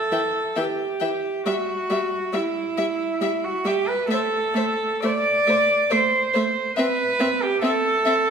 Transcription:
Already playing: cello A4
0.12 viola E3, violin E5 G5
0.56 viola E3, cello G4, violin E5 G5
1.00 viola E3, violin E5 G5
1.46 viola G3, cello F#4, violin E5
1.90 viola G3, violin E5
2.33 viola G3, cello E4, violin E5
2.78 viola G3, violin E5
3.21 viola G3, violin E5
3.44 cello F#4
3.65 viola G3, cello G4, violin E5
3.88 cello B4
4.07 viola A3, cello A4, violin E5
4.13 violin C5
4.54 viola A3, violin C5 E5
5.02 viola A3, violin C5 E5, cello D5
5.47 viola A3, violin C5 E5
5.90 viola A3, violin C5 E5, cello C5
6.33 viola A3, violin C5 E5
6.76 viola C4, cello B4, violin E5
7.19 viola C4, violin E5
7.43 cello G4
7.62 viola C4, cello A4, violin E5
8.05 viola C4, violin E5

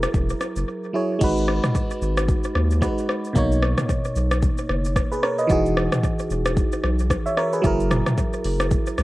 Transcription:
Already playing: fm electric piano F#3 E4 G#4 A#4
0.03 cross-stick, shaker
0.14 sub bass E1, kick, shaker
0.29 shaker
0.41 cross-stick, shaker
0.56 sub bass F#1, shaker
0.93 fm electric piano F#3 E4 G#4 C#5
1.19 sub bass G#1, fm electric piano G#3 D#4 F#4, kick, crash, shaker
1.24 fm electric piano B4
1.37 shaker
1.48 cross-stick
1.64 cross-stick, mid tom, shaker
1.75 kick, shaker
1.91 shaker
2.02 sub bass G#1, shaker
2.17 cross-stick, shaker
2.28 kick, shaker
2.44 shaker
2.55 sub bass D#2, cross-stick
2.71 shaker
2.81 fm electric piano G#3 D#4 F#4 B4, kick, cross-stick, shaker
2.98 shaker
3.09 cross-stick
3.24 shaker
3.33 sub bass B1, fm electric piano B2 A#3 D#4, kick, shaker
3.38 fm electric piano C#5
3.52 shaker
3.62 cross-stick
3.78 cross-stick, mid tom, shaker
3.89 kick, shaker
4.04 shaker
4.16 sub bass B1, shaker
4.31 cross-stick, shaker
4.42 kick, shaker
4.58 shaker
4.69 sub bass F#1, cross-stick
4.85 shaker
4.96 kick, cross-stick, shaker
5.12 fm electric piano G#4 B4, shaker
5.23 fm electric piano A#4 C#5, cross-stick
5.39 fm electric piano B4 D#5, shaker
5.47 sub bass E1, fm electric piano E3 D#4 F#4, kick, shaker
5.52 fm electric piano G#4
5.66 shaker
5.77 cross-stick
5.92 cross-stick, mid tom, shaker
6.03 kick, shaker
6.19 shaker
6.30 sub bass E1, shaker
6.46 cross-stick, shaker
6.57 kick, shaker
6.72 shaker
6.84 sub bass B1, cross-stick
6.99 shaker
7.10 kick, cross-stick, shaker
7.26 fm electric piano C#5 E5, shaker
7.37 fm electric piano A#4 C#5, cross-stick
7.53 fm electric piano G#4 B4, shaker
7.62 sub bass F#1, fm electric piano F#3 E4 G#4, kick, shaker
7.67 fm electric piano A#4
7.80 shaker
7.91 cross-stick, mid tom, shaker
8.06 cross-stick, mid tom, shaker
8.18 kick, shaker
8.33 shaker
8.44 sub bass F#1, open hi-hat
8.60 cross-stick, shaker
8.71 kick, shaker
8.86 shaker
8.98 sub bass C#2, cross-stick, shaker

